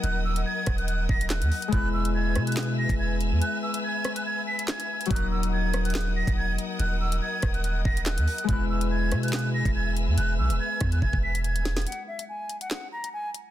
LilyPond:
<<
  \new Staff \with { instrumentName = "Flute" } { \time 4/4 \key fes \lydian \tempo 4 = 142 ges'''8 fes'''8 aes'''8. ges'''16 ges'''8 bes'''8 ges'''4 | ges'''8 e'''8 gis'''8. ges'''16 ges'''8 bes'''8 gis'''8 r8 | ges'''8 e'''8 gis'''8. ges'''16 gis'''8 b'''8 gis'''4 | ges'''8 fes'''8 aes'''8. ges'''16 ges'''8 bes'''8 aes'''8 r8 |
ges'''8 fes'''8 aes'''8. ges'''16 ges'''8 bes'''8 ges'''4 | ges'''8 e'''8 gis'''8. ges'''16 ges'''8 bes'''8 gis'''8 r8 | ges'''8 e'''8 gis'''8. ges'''16 gis'''8 b'''8 gis'''4 | ges''8 fes''8 aes''8. ges''16 ges''8 bes''8 aes''8 r8 | }
  \new Staff \with { instrumentName = "String section" } { \time 4/4 \key fes \lydian <bes' ees'' ges'' ees'''>1 | <b' e'' gis'' e'''>1~ | <b' e'' gis'' e'''>1 | <bes' ees'' ges'' ees'''>1~ |
<bes' ees'' ges'' ees'''>1 | <b' e'' gis'' e'''>1~ | <b' e'' gis'' e'''>1 | r1 | }
  \new Staff \with { instrumentName = "Harp" } { \time 4/4 \key fes \lydian <ges bes ees' bes'>1 | <gis b e' b'>1~ | <gis b e' b'>1 | <ges bes ees' bes'>1~ |
<ges bes ees' bes'>1 | <gis b e' b'>1~ | <gis b e' b'>1 | r1 | }
  \new Staff \with { instrumentName = "808-style bass" } { \clef bass \time 4/4 \key fes \lydian ees,,4 r8 ees,,4 ees,,8. ees,16 r8 | e,,4. b,4~ b,16 e,,4 e,16 | r1 | ees,,2~ ees,,8. ees,,8 fes,,16 r8 |
ees,,4 r8 ees,,4 ees,,8. ees,16 r8 | e,,4. b,4~ b,16 e,,4 e,16 | e,,8 b,,16 e,,16 r8 e,8 e,,16 e,,4 ees,,16. e,,16. | r1 | }
  \new DrumStaff \with { instrumentName = "Drums" } \drummode { \time 4/4 hh8. hh16 r8 <hh bd ss>16 hh16 hh8 bd16 hh16 <hc hh sn>16 hh16 hho16 hh16 | <hh bd>8. hh16 r8 <hh ss>16 hh32 hh32 <hc hh sn>32 hh8 r32 <hh bd>16 r8 hh8 | hh8. hh16 r8 <hh ss>16 hh16 r8. hh16 <hc hh sn>16 hh8 hh32 hh32 | <hh bd>32 hh8 r32 hh16 r8 <hh ss>16 hh32 hh32 <hc hh sn>32 hh8 r32 <hh bd>16 r8 hh8 |
hh8. hh16 r8 <hh bd ss>16 hh16 hh8 bd16 hh16 <hc hh sn>16 hh16 hho16 hh16 | <hh bd>8. hh16 r8 <hh ss>16 hh32 hh32 <hc hh sn>32 hh8 r32 <hh bd>16 r8 hh8 | hh8. hh16 r8 <hh bd ss>16 hh16 bd16 bd8 hh16 hh16 hh16 sn16 <hh sn>32 hh32 | hh32 hh8 r32 hh16 r8 hh16 hh16 <hc sn>8. hh16 r8 hh8 | }
>>